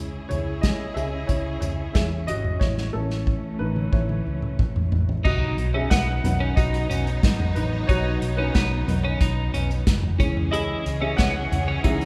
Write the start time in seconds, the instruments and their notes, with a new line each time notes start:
Already playing: fingered electric bass C#2, string section C#3 C#4 E4 G#4, upright piano G#3 C#4 E4
0.29 fingered electric bass C#2, upright piano E4 C#5, closed hi-hat, floor tom
0.61 upright piano G#4 D#5, kick, snare, closed hi-hat
0.94 fingered electric bass C#2, upright piano G#4 E5, closed hi-hat
1.27 fingered electric bass C#2, upright piano E4 C#5, kick, closed hi-hat
1.61 fingered electric bass C#2, upright piano E4 C#5, closed hi-hat, floor tom
1.94 fingered electric bass E2, upright piano G#4 E5, kick, snare, closed hi-hat
2.27 fingered electric bass G#1, upright piano F#4 D#5, closed hi-hat
2.45 floor tom
2.60 fingered electric bass A1, string section E3 A3, upright piano E4 C#5, kick, snare
2.78 snare
2.93 fingered electric bass A1, upright piano A3 C#4 E4 A4
3.10 snare
3.27 kick
3.59 fingered electric bass A1, upright piano D#4 B4
3.76 mid tom
3.92 fingered electric bass A1, upright piano A3 C#4 E4 C#5, kick
4.09 mid tom
4.26 fingered electric bass C#2
4.42 mid tom
4.59 fingered electric bass A1, kick, mid tom
4.76 floor tom
4.92 fingered electric bass A1, floor tom
5.09 floor tom
5.24 fingered electric bass B1, string section F#3 B3 D#4, clean electric guitar D#4, upright piano F#4 D#5, kick, crash, impact
5.58 fingered electric bass B1, closed hi-hat
5.74 clean electric guitar C#4, upright piano G#4 E5
5.90 fingered electric bass B1, clean electric guitar B3, upright piano B4 F#5, kick, snare, closed hi-hat
6.23 fingered electric bass B1, upright piano D#3 F#3 B3, closed hi-hat, floor tom
6.40 clean electric guitar C#4
6.56 fingered electric bass B1, clean electric guitar D#4, upright piano F#4 D#5, kick, closed hi-hat
6.74 closed hi-hat
6.90 fingered electric bass B1, clean electric guitar C#4, closed hi-hat, floor tom
7.07 closed hi-hat
7.23 fingered electric bass G#1, upright piano D#3 F#3 B3, kick, snare, closed hi-hat
7.40 floor tom
7.55 fingered electric bass A1, upright piano D#4 B4, closed hi-hat
7.87 fingered electric bass B1, clean electric guitar D#4, upright piano F#4 C#5, kick, closed hi-hat
8.22 fingered electric bass B1, closed hi-hat
8.37 clean electric guitar C#4, upright piano D#4 B4
8.53 fingered electric bass B1, clean electric guitar B3, upright piano D#4 B4, kick, snare, closed hi-hat
8.87 fingered electric bass B1, upright piano D#3 F#3 B3, closed hi-hat, floor tom
9.05 clean electric guitar C#4
9.21 fingered electric bass B1, clean electric guitar D#4, kick, closed hi-hat
9.54 fingered electric bass B1, clean electric guitar C#4, closed hi-hat, floor tom
9.71 closed hi-hat
9.87 fingered electric bass F#1, kick, snare, closed hi-hat
10.03 floor tom
10.18 fingered electric bass C#2, string section C#3 E3 C#4 G#4, upright piano E3 G#3 C#4, clean electric guitar C#4, kick, closed hi-hat
10.37 floor tom
10.51 clean electric guitar E4, upright piano G#4 D#5, closed hi-hat
10.86 fingered electric bass C#2, closed hi-hat
11.00 clean electric guitar C#4, upright piano G#4 E5
11.17 fingered electric bass C#2, clean electric guitar B3, upright piano C#5 F#5, kick, snare, closed hi-hat
11.52 fingered electric bass C#2, closed hi-hat, floor tom
11.68 clean electric guitar C#4
11.84 fingered electric bass C#2, upright piano E3 G#3 C#4 G#4 E5, clean electric guitar D#4, kick, closed hi-hat
12.01 closed hi-hat